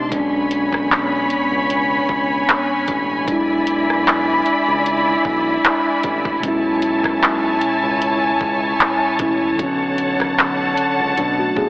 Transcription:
Already playing: C3 D#3 A3 D4 D#4 D5 C6
0.08 B2 G#3 B3 C#5 G#5
0.12 B1 C#4 D4 B5, kick, closed hi-hat
0.51 closed hi-hat
0.73 kick, cross-stick
0.92 clap
1.30 C#2, closed hi-hat
1.51 C#2
1.70 closed hi-hat
2.09 C#2, kick
2.49 clap, closed hi-hat
2.88 A1, kick, closed hi-hat
3.24 B1 G3 E4 D5 B5, kick, closed hi-hat
3.28 G#3 D4 E4
3.67 closed hi-hat
3.90 cross-stick
4.08 clap
4.46 C#2, closed hi-hat
4.68 C#2
4.86 closed hi-hat
5.25 B1, kick
5.65 clap, closed hi-hat
6.03 A1, kick, closed hi-hat
6.25 kick
6.40 B1 B2 G#3 G#5 A5, kick, closed hi-hat
6.44 C#4 C#5
6.48 E4
6.82 closed hi-hat
7.04 kick, cross-stick
7.23 clap
7.61 C#2, closed hi-hat
7.83 C#2
8.02 closed hi-hat
8.41 C#2, kick
8.80 clap, closed hi-hat
9.18 A1 B2 G#3 C#4, kick, closed hi-hat
9.22 E4
9.55 B1 D3 F#3 F#5 A5, kick, closed hi-hat
9.59 D3 C#4
9.98 closed hi-hat
10.20 kick, cross-stick
10.39 clap
10.77 C#2, closed hi-hat
10.99 C#2
11.17 B2 F#3 D4, closed hi-hat
11.39 A3 F#4
11.57 A2 B3 G#4, kick

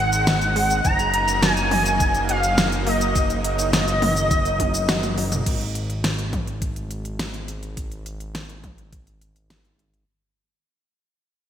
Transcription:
Already playing: G#1 G#3 C4 D#4 F#5
0.13 closed hi-hat, shaker
0.27 D#3, snare, closed hi-hat, shaker
0.42 closed hi-hat, shaker
0.56 G#3, open hi-hat
0.70 closed hi-hat, shaker
0.85 F#1 D#3 F#3 A#3 D#4 A#5, kick, closed hi-hat, shaker
0.99 closed hi-hat, shaker
1.14 closed hi-hat
1.28 closed hi-hat, shaker
1.42 F#3 G#5, snare, closed hi-hat, shaker
1.57 closed hi-hat, shaker
1.71 A#3, open hi-hat, mid tom
1.86 closed hi-hat, shaker
2.00 D#3, kick, closed hi-hat, shaker
2.15 closed hi-hat, shaker
2.29 F5, closed hi-hat
2.43 closed hi-hat, shaker
2.58 F#3, snare, closed hi-hat, shaker
2.72 closed hi-hat, shaker
2.87 A#3 D#5, open hi-hat
3.01 closed hi-hat, shaker
3.16 D#3, kick, closed hi-hat, shaker
3.30 closed hi-hat, shaker
3.44 D#5, closed hi-hat
3.59 closed hi-hat, shaker
3.73 F#3, snare, closed hi-hat, shaker
3.88 closed hi-hat, shaker
4.02 A#3, open hi-hat, mid tom
4.17 closed hi-hat, shaker
4.31 D#3, kick, closed hi-hat, shaker
4.45 closed hi-hat, shaker
4.60 D#3, kick, closed hi-hat, high tom
4.74 closed hi-hat, shaker
4.89 F#4, snare, closed hi-hat, mid tom, shaker
5.03 closed hi-hat, mid tom, shaker
5.18 F#3, open hi-hat
5.32 closed hi-hat, mid tom, shaker
5.46 G#1, kick, closed hi-hat, crash
5.61 closed hi-hat
5.75 closed hi-hat
5.90 closed hi-hat
6.04 snare, closed hi-hat
6.19 closed hi-hat
6.33 kick, closed hi-hat, mid tom
6.47 closed hi-hat
6.62 kick, closed hi-hat
6.76 closed hi-hat
6.91 closed hi-hat
7.05 closed hi-hat
7.19 snare, closed hi-hat
7.34 closed hi-hat
7.48 closed hi-hat
7.63 closed hi-hat
7.77 kick, closed hi-hat
7.92 closed hi-hat
8.06 closed hi-hat
8.20 closed hi-hat
8.35 snare, closed hi-hat
8.49 closed hi-hat
8.64 kick, closed hi-hat, mid tom
8.78 closed hi-hat
8.93 kick, closed hi-hat
9.07 closed hi-hat
9.21 closed hi-hat
9.36 closed hi-hat
9.50 snare, closed hi-hat
9.65 closed hi-hat
9.79 closed hi-hat
9.94 closed hi-hat

